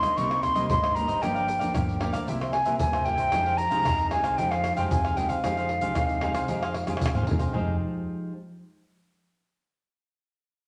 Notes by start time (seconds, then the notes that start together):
Already playing: G2 G3 A#3 D#4 C6
0.02 G2 A#4 C5 D#5, pandeiro, tamborim, shaker
0.17 C2 C3 G3 A#3 D#4 A#4 C5 D#5 C#6, pandeiro, shaker, surdo
0.30 A#4 C5 D#5, pandeiro, tamborim, shaker
0.42 C6, muted cavaquinho stroke, pandeiro, tamborim, shaker, surdo
0.55 C2 G3 A#3 D#4 A#4 C5 D#5, pandeiro, shaker
0.70 G#1 G2 C6, pandeiro, shaker, surdo
0.82 A#4 C5 D#5, pandeiro, tamborim, shaker
0.95 G3 A#3 D#4 A#4 C5 D#5 A#5, pandeiro, shaker
1.08 A#4 C5 D#5, pandeiro, shaker
1.21 G1 G2 F3 A#3 D4 G4 A#4 D5 F5 G5, pandeiro, tamborim, shaker, surdo
1.35 A#4 D5 F5, pandeiro, shaker
1.47 muted cavaquinho stroke, pandeiro, shaker
1.59 D2 F3 A#3 D4 A#4 D5 F5, pandeiro, shaker
1.73 G1 D3 G4 A#4 D5 F5, pandeiro, tamborim, shaker, surdo
1.89 pandeiro, shaker
2.00 F3 A#3 D4 G4 A#4 D5 F5, pandeiro, tamborim
2.13 D2 A#4 D5 F5, pandeiro, tamborim, shaker
2.27 C2 C3 A#3 E4 G4 A#4 C5 E5, pandeiro, shaker, surdo
2.41 A#4 C5 E5, pandeiro, tamborim, shaker
2.53 G#5, muted cavaquinho stroke, pandeiro, tamborim
2.65 C2 A#3 E4 G4 A#4 C5 E5, pandeiro, shaker
2.79 C2 G2 G#5, pandeiro, shaker, surdo
2.93 A#4 C5 E5, pandeiro, tamborim, shaker
3.05 A#3 E4 G4 A#4 C5 E5 G5, pandeiro
3.18 A#4 C5 E5, pandeiro, shaker
3.32 F2 F3 G#3 D#4 G4 G#4 C5 F5, pandeiro, tamborim, shaker, surdo
3.46 G#4 C5 F5, pandeiro, shaker
3.58 A#5, muted cavaquinho stroke, pandeiro, shaker
3.71 C2 G#3 D#4 G4 G#4 C5 F5, pandeiro, shaker
3.85 F2 C3 D#4 G#4 C5 F5, pandeiro, tamborim, shaker, surdo
3.99 pandeiro, shaker
4.11 G#3 D#4 G4 G#4 C5 F5 G#5, pandeiro, tamborim
4.24 C2 G#4 C5 F5, pandeiro, tamborim, shaker
4.37 F2 F3 G#3 D#4 G4 G#4 C5 F5 G5, pandeiro, shaker, surdo
4.51 G#4 C5 F5, pandeiro, tamborim, shaker
4.64 muted cavaquinho stroke, pandeiro, tamborim, shaker
4.76 F2 G#3 D#4 G4 G#4 C5 F5 G5, pandeiro, shaker
4.91 F2 C3 G#5, pandeiro, shaker, surdo
5.04 G#4 C5 F5, pandeiro, tamborim, shaker
5.17 G#3 D#4 G4 G#4 C5 F5 G5, pandeiro, shaker
5.29 G#4 C5 F5, pandeiro, shaker
5.44 F2 F3 G#3 D#4 G4 G#4 C5 F5, pandeiro, tamborim, shaker, surdo
5.57 G#4 C5 F5, pandeiro, shaker
5.69 muted cavaquinho stroke, pandeiro
5.81 C2 G#3 D#4 G4 G#4 C5 F5, pandeiro, shaker
5.95 F2 C3 D#4 G#4 C5 F5, pandeiro, tamborim, shaker, surdo
6.09 pandeiro, shaker
6.21 G#3 D#4 G4 G#4 C5 F5, pandeiro, tamborim
6.34 C2 G#4 C5 F5, pandeiro, tamborim, shaker
6.48 F2 F3 G#3 D#4 G4 G#4 C5 F5, pandeiro, shaker, surdo
6.63 G#4 C5 F5, pandeiro, tamborim, shaker
6.74 muted cavaquinho stroke, pandeiro, tamborim
6.87 F2 G#3 D#4 G4 G#4 C5 F5, pandeiro, tamborim, shaker
6.97 tamborim
7.01 D#2 C3, pandeiro, shaker, surdo
7.06 tamborim
7.15 G#4 C5 F5, surdo, pandeiro, shaker
7.23 F2 D#4 G#4, pandeiro, surdo
7.27 G#3 D#4 G4 C5 F5, surdo
7.39 G#4 C5 F5, pandeiro, shaker, surdo
7.49 D#4, surdo
7.53 F1 F3 G#3 D#4 G4 G#4 C5 F5, surdo